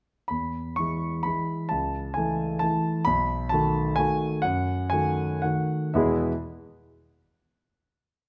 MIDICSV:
0, 0, Header, 1, 2, 480
1, 0, Start_track
1, 0, Key_signature, 4, "major"
1, 0, Tempo, 460476
1, 326, Time_signature, 3, 2, 24, 8
1, 5126, Tempo, 517688
1, 6086, Tempo, 490597
1, 7526, Tempo, 468019
1, 8407, End_track
2, 0, Start_track
2, 0, Title_t, "Grand piano"
2, 0, Program_c, 0, 0
2, 291, Note_on_c, 0, 83, 67
2, 317, Note_on_c, 0, 40, 38
2, 516, Control_c, 0, 64, 127
2, 794, Note_off_c, 0, 40, 0
2, 794, Note_on_c, 0, 85, 68
2, 796, Note_off_c, 0, 83, 0
2, 818, Note_on_c, 0, 52, 32
2, 822, Note_on_c, 0, 56, 32
2, 827, Note_on_c, 0, 64, 35
2, 1266, Note_off_c, 0, 52, 0
2, 1268, Note_off_c, 0, 56, 0
2, 1270, Note_off_c, 0, 64, 0
2, 1281, Note_on_c, 0, 83, 73
2, 1295, Note_off_c, 0, 85, 0
2, 1306, Note_on_c, 0, 52, 33
2, 1311, Note_on_c, 0, 56, 33
2, 1318, Control_c, 0, 64, 0
2, 1323, Note_on_c, 0, 64, 37
2, 1742, Note_off_c, 0, 52, 0
2, 1744, Note_off_c, 0, 56, 0
2, 1750, Note_off_c, 0, 64, 0
2, 1759, Note_on_c, 0, 81, 75
2, 1771, Note_off_c, 0, 83, 0
2, 1780, Note_on_c, 0, 37, 45
2, 1994, Control_c, 0, 64, 127
2, 2229, Note_on_c, 0, 80, 70
2, 2235, Note_off_c, 0, 37, 0
2, 2238, Note_off_c, 0, 81, 0
2, 2258, Note_on_c, 0, 52, 39
2, 2263, Note_on_c, 0, 57, 39
2, 2267, Note_on_c, 0, 64, 42
2, 2693, Note_off_c, 0, 52, 0
2, 2695, Note_off_c, 0, 57, 0
2, 2697, Note_off_c, 0, 64, 0
2, 2703, Note_on_c, 0, 81, 84
2, 2720, Note_off_c, 0, 80, 0
2, 2728, Note_on_c, 0, 52, 42
2, 2740, Note_on_c, 0, 57, 38
2, 2742, Control_c, 0, 64, 0
2, 2743, Note_on_c, 0, 64, 43
2, 3155, Note_off_c, 0, 52, 0
2, 3161, Note_off_c, 0, 57, 0
2, 3162, Note_off_c, 0, 64, 0
2, 3175, Note_on_c, 0, 83, 94
2, 3184, Note_off_c, 0, 81, 0
2, 3199, Note_on_c, 0, 35, 60
2, 3368, Control_c, 0, 64, 127
2, 3642, Note_on_c, 0, 81, 88
2, 3652, Note_off_c, 0, 35, 0
2, 3654, Note_off_c, 0, 83, 0
2, 3671, Note_on_c, 0, 51, 45
2, 3675, Note_on_c, 0, 57, 46
2, 3679, Note_on_c, 0, 66, 46
2, 4112, Note_off_c, 0, 51, 0
2, 4114, Note_off_c, 0, 57, 0
2, 4116, Note_off_c, 0, 66, 0
2, 4124, Note_on_c, 0, 80, 86
2, 4139, Note_off_c, 0, 81, 0
2, 4147, Note_on_c, 0, 51, 45
2, 4153, Note_on_c, 0, 57, 46
2, 4159, Note_on_c, 0, 66, 46
2, 4161, Control_c, 0, 64, 0
2, 4591, Note_off_c, 0, 51, 0
2, 4594, Note_off_c, 0, 57, 0
2, 4597, Note_off_c, 0, 66, 0
2, 4606, Note_on_c, 0, 78, 83
2, 4621, Note_off_c, 0, 80, 0
2, 4633, Note_on_c, 0, 42, 60
2, 4826, Control_c, 0, 64, 127
2, 5104, Note_on_c, 0, 80, 79
2, 5111, Note_off_c, 0, 42, 0
2, 5113, Note_off_c, 0, 78, 0
2, 5129, Note_on_c, 0, 51, 43
2, 5132, Note_on_c, 0, 57, 42
2, 5139, Note_on_c, 0, 66, 46
2, 5569, Note_off_c, 0, 51, 0
2, 5570, Note_off_c, 0, 57, 0
2, 5574, Note_off_c, 0, 66, 0
2, 5590, Note_on_c, 0, 78, 67
2, 5595, Note_off_c, 0, 80, 0
2, 5610, Note_on_c, 0, 51, 38
2, 5616, Note_on_c, 0, 57, 36
2, 5617, Control_c, 0, 64, 0
2, 5623, Note_on_c, 0, 66, 39
2, 6053, Note_off_c, 0, 51, 0
2, 6056, Note_off_c, 0, 57, 0
2, 6059, Note_off_c, 0, 66, 0
2, 6072, Note_on_c, 0, 76, 60
2, 6079, Note_on_c, 0, 40, 72
2, 6080, Note_off_c, 0, 78, 0
2, 6084, Note_on_c, 0, 47, 61
2, 6084, Note_on_c, 0, 59, 64
2, 6085, Note_on_c, 0, 56, 66
2, 6090, Note_on_c, 0, 64, 67
2, 6093, Note_on_c, 0, 68, 61
2, 6250, Control_c, 0, 64, 127
2, 6342, Note_off_c, 0, 76, 0
2, 6347, Note_off_c, 0, 40, 0
2, 6349, Note_off_c, 0, 47, 0
2, 6349, Note_off_c, 0, 59, 0
2, 6350, Note_off_c, 0, 56, 0
2, 6353, Note_off_c, 0, 64, 0
2, 6354, Note_off_c, 0, 68, 0
2, 6436, Control_c, 0, 64, 0
2, 8407, End_track
0, 0, End_of_file